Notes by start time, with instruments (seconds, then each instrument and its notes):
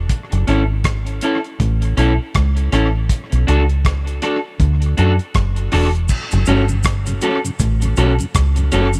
0.09 kick, closed hi-hat
0.32 fingered electric bass F#1, closed hi-hat
0.47 fingered electric bass G#1, clean electric guitar C#4 E4 A4, closed hi-hat
0.84 kick, cross-stick, closed hi-hat
1.06 closed hi-hat
1.21 clean electric guitar C#4 E4 A4, closed hi-hat
1.44 closed hi-hat
1.60 fingered electric bass A1, kick, closed hi-hat
1.82 closed hi-hat
1.97 fingered electric bass B1, clean electric guitar C#4 E4 A4, closed hi-hat
2.35 fingered electric bass C#2, kick, cross-stick, closed hi-hat
2.57 closed hi-hat
2.72 fingered electric bass A1, clean electric guitar C#4 E4 A4, cross-stick, closed hi-hat
3.09 kick, closed hi-hat
3.32 fingered electric bass B1, closed hi-hat
3.47 fingered electric bass C#2, clean electric guitar D4 F#4 A4, closed hi-hat
3.69 closed hi-hat
3.85 kick, cross-stick, closed hi-hat
4.07 closed hi-hat
4.22 clean electric guitar D4 F#4 A4, cross-stick, closed hi-hat
4.60 fingered electric bass D2, kick, closed hi-hat
4.82 closed hi-hat
4.97 fingered electric bass F#2, clean electric guitar D4 F#4 A4, closed hi-hat
5.19 closed hi-hat
5.34 fingered electric bass F#1, kick, cross-stick, closed hi-hat
5.56 closed hi-hat
5.72 fingered electric bass E1, clean electric guitar D4 F#4 A4, cross-stick, open hi-hat
5.95 closed hi-hat
6.08 kick, crash, cabasa
6.31 fingered electric bass F#1, tonewheel organ F#2 C#3, closed hi-hat, cabasa
6.46 fingered electric bass G1, tonewheel organ F#3 A3 C#4, clean electric guitar C#4 F#4 A4, closed hi-hat, cabasa
6.68 tonewheel organ F#2 C#3, cabasa
6.83 kick, cross-stick, closed hi-hat, cabasa
7.06 tonewheel organ F#2 C#3, closed hi-hat, cabasa
7.21 tonewheel organ F#3 A3 C#4, clean electric guitar C#4 F#4 A4, closed hi-hat, cabasa
7.44 tonewheel organ F#2 C#3, closed hi-hat, cabasa
7.59 fingered electric bass A1, kick, closed hi-hat, cabasa
7.82 tonewheel organ F#2 C#3, closed hi-hat, cabasa
7.96 fingered electric bass B1, tonewheel organ F#3 A3 C#4, clean electric guitar C#4 F#4 A4, closed hi-hat, cabasa
8.19 tonewheel organ F#2 C#3, closed hi-hat, cabasa
8.35 fingered electric bass C#2, kick, cross-stick, closed hi-hat, cabasa
8.56 tonewheel organ F#2 C#3, closed hi-hat, cabasa
8.72 fingered electric bass F#1, tonewheel organ F#3 A3 C#4, clean electric guitar C#4 F#4 A4, closed hi-hat, cabasa
8.93 tonewheel organ F#2 C#3, closed hi-hat, cabasa